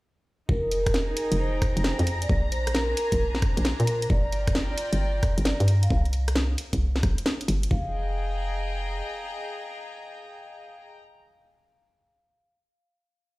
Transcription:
0.49 F1 D#4 A#4 A#5, kick
0.70 G#4 A#4, open hi-hat
0.86 kick, cross-stick, closed hi-hat
0.94 snare
1.09 A#4
1.17 open hi-hat
1.22 G5
1.32 F1 A#5, closed hi-hat
1.39 C5
1.62 kick, cross-stick, open hi-hat
1.77 F1, closed hi-hat
1.84 C5, snare
1.99 F2, closed hi-hat
2.07 open hi-hat
2.22 D5, closed hi-hat
2.29 A#1 D4, kick
2.49 C5, open hi-hat
2.67 cross-stick, closed hi-hat
2.75 A#4, snare
2.80 G#5
2.97 A#4, open hi-hat
3.12 A#1, kick, closed hi-hat
3.35 snare
3.42 kick, cross-stick, open hi-hat
3.57 A#1, closed hi-hat
3.65 snare
3.80 A#2 A#4, closed hi-hat
3.87 open hi-hat
4.02 closed hi-hat
4.10 G1 F4 D5, kick
4.24 G5
4.28 D5
4.32 D5, open hi-hat
4.47 kick, cross-stick, closed hi-hat
4.55 snare
4.70 D5
4.78 open hi-hat
4.93 G1, closed hi-hat
5.00 D5
5.23 kick, cross-stick, open hi-hat
5.38 G1, closed hi-hat
5.45 D5, snare
5.60 G2, closed hi-hat
5.68 open hi-hat
5.83 F5, closed hi-hat
5.90 C2, kick
6.05 closed hi-hat
6.13 open hi-hat
6.28 cross-stick, closed hi-hat
6.36 snare
6.58 open hi-hat
6.73 C2, kick, closed hi-hat
6.96 snare
7.03 A#1, kick, cross-stick, open hi-hat
7.18 closed hi-hat
7.26 snare
7.41 closed hi-hat
7.48 G1, open hi-hat
7.63 closed hi-hat
7.71 F1 G#4 F5, kick
7.80 D#5
7.87 G5
7.92 A#5

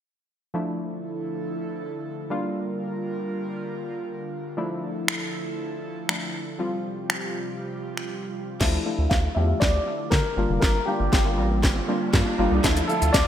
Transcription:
0.54 D3 F3 A3 D4 E4 A4
2.30 G3 A#3 D4 F4 A#4
4.57 F3 A3 D4 E4 A4
5.08 finger snap
6.09 F3 A3 D4 E4, finger snap
6.59 C3 F3 G3 C4 F4 G4
7.10 finger snap
7.97 finger snap
8.60 D2 D3 F3 A3 D4 E4 F4 A4 E5 E6, kick, snare, crash, riser
8.73 A5, muted clean electric guitar stroke
8.86 F3 A3 D4 E4 F5, muted clean electric guitar stroke
8.98 D2 F4 A4 E5
9.09 D2 E4 F5, kick, snare
9.24 A3, muted clean electric guitar stroke
9.35 E2 F3 A3 D4 F4 G4 A4 E5
9.49 muted clean electric guitar stroke
9.60 D2 D5 E6, muted clean electric guitar stroke, kick, snare
9.74 muted clean electric guitar stroke
9.86 F4 A4 E5 F5
9.99 muted clean electric guitar stroke
10.10 D3 A#4, muted clean electric guitar stroke, kick, snare
10.24 muted clean electric guitar stroke
10.37 G1 G3 A#3 D4 F4 A#4 D5 F5
10.49 F1 D3 A#4 D5 F5
10.60 G1 A#4 D5 F5 F6, kick, snare
10.75 A#5, muted clean electric guitar stroke
10.86 G3 A#3 D4 F4 G4 G5, muted clean electric guitar stroke
11.00 G1 A#4 D5 F5
11.13 G1 F4, kick, snare
11.25 G3 A#3 D4 F4, muted clean electric guitar stroke
11.38 A1 G3 A#4 D5 F5
11.51 muted clean electric guitar stroke
11.63 G1 F6, muted clean electric guitar stroke, kick, snare
11.76 muted clean electric guitar stroke
11.88 G3 A#3 D4 F4 A#4 D5 F5 G5
12.01 muted clean electric guitar stroke
12.13 G2 G3 A#3 D4 F4, muted clean electric guitar stroke, kick, snare
12.26 muted clean electric guitar stroke
12.38 G1 G3 A#3 D4 F4 A#4 D5 F5
12.51 C2 D3 A#4 D5 F5
12.64 D2 F3 A3 D4 E4 F4 A4 E5 E6, kick, snare, closed hi-hat, shaker
12.76 A5, muted clean electric guitar stroke, closed hi-hat, shaker
12.88 F3 A3 D4 E4 A4 F5, muted clean electric guitar stroke, shaker
13.01 D2 F4 A4 E5, closed hi-hat, shaker
13.13 D2 E4 D5, kick, snare, closed hi-hat, shaker

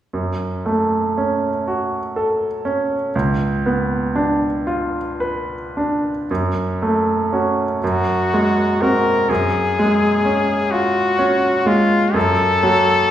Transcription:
0.13 F#2
0.66 A3
1.18 C#4
1.68 F#4
2.16 A4
2.65 C#4
3.15 C#2
3.66 B3
4.16 D4
4.67 F4
5.20 B4
5.77 D4
6.31 F#2
6.82 A3
7.33 C#4 F#4
7.82 F#2 F#4
8.34 G#3
8.81 C4 F#4 A#4
9.29 F#2 G#4
9.79 G#3
10.25 C#4
10.71 F4 F#4
11.19 C#4
11.66 G#3 F4
12.14 F#2 A4
12.63 F#3

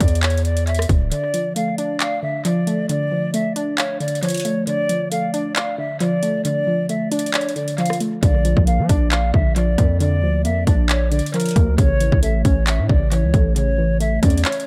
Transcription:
0.00 E2 D5, kick, closed hi-hat
0.08 closed hi-hat
0.15 closed hi-hat
0.23 C#5, clap, closed hi-hat
0.30 closed hi-hat
0.38 closed hi-hat
0.45 D5, closed hi-hat
0.57 closed hi-hat
0.67 E5, closed hi-hat
0.75 closed hi-hat
0.79 cross-stick, closed hi-hat
0.89 D1, kick, closed hi-hat
1.11 D3 D5, closed hi-hat
1.34 F3, closed hi-hat
1.56 A3 F5, closed hi-hat
1.78 D4 D5, closed hi-hat
2.00 D5 F5, clap, closed hi-hat
2.23 D3 E5
2.45 F3 D5, closed hi-hat
2.67 A3, closed hi-hat
2.89 D3 D5, closed hi-hat
3.12 F3
3.34 A3 E5, closed hi-hat
3.56 D4 D5, closed hi-hat
3.78 C#5 F5, clap, closed hi-hat
4.00 D3 D5, closed hi-hat
4.08 closed hi-hat
4.15 closed hi-hat
4.22 F3 C#5, closed hi-hat
4.29 closed hi-hat
4.30 closed hi-hat
4.34 closed hi-hat
4.37 closed hi-hat
4.40 closed hi-hat
4.45 A3, closed hi-hat
4.67 D3 D5, closed hi-hat
4.89 F3, closed hi-hat
5.11 A3 F5, closed hi-hat
5.34 D4 D5, closed hi-hat
5.56 D5 F5, clap, closed hi-hat
5.78 D3 E5
6.00 F3 D5, closed hi-hat
6.23 A3, closed hi-hat
6.45 D3 D5, closed hi-hat
6.67 F3
6.89 A3 E5, closed hi-hat
7.12 D4 D5, closed hi-hat
7.19 closed hi-hat
7.26 closed hi-hat
7.34 C#5 D5, clap, closed hi-hat
7.41 closed hi-hat
7.49 closed hi-hat
7.56 D3 D5, closed hi-hat
7.68 closed hi-hat
7.78 F3 F5, closed hi-hat
7.86 closed hi-hat
7.90 cross-stick, closed hi-hat
8.00 A3, closed hi-hat
8.23 A#1 D3 D5, kick, closed hi-hat
8.45 F3, closed hi-hat
8.57 A#1, kick
8.67 A#3 F5, closed hi-hat
8.79 F3
8.89 A#1 D4 D5, kick, closed hi-hat
9.12 D5 F5, clap, closed hi-hat
9.34 A#1 D3 E5, kick
9.56 F3 D5, closed hi-hat
9.78 F2 A#3, kick, closed hi-hat
10.00 D3 D5, closed hi-hat
10.23 D2 F3
10.45 F2 A#3 E5, closed hi-hat
10.67 A#1 D4 D5, kick, closed hi-hat
10.89 C#5 D5, clap, closed hi-hat
11.11 D3 D5, closed hi-hat
11.19 closed hi-hat
11.26 closed hi-hat
11.34 F3 A#4, closed hi-hat
11.40 closed hi-hat
11.41 closed hi-hat
11.46 closed hi-hat
11.49 closed hi-hat
11.51 closed hi-hat
11.56 D2 A#3, kick, closed hi-hat
11.78 A1 C#3 C#5, kick, closed hi-hat
12.00 E3, closed hi-hat
12.12 A1, kick
12.23 A3 E5, closed hi-hat
12.45 A1 C#4 C#5, kick, closed hi-hat
12.67 C#5 E5, clap, closed hi-hat
12.79 A2
12.89 A1 C#3 D5, kick
13.12 E3 C#5, closed hi-hat
13.23 C#2
13.34 A1 A3, kick, closed hi-hat
13.56 C#3 C#5, closed hi-hat
13.78 E3
14.00 A3 E5, closed hi-hat
14.23 E2 C#4 D5, kick, closed hi-hat
14.30 closed hi-hat
14.38 closed hi-hat
14.45 C#5, clap, closed hi-hat
14.52 closed hi-hat
14.60 closed hi-hat

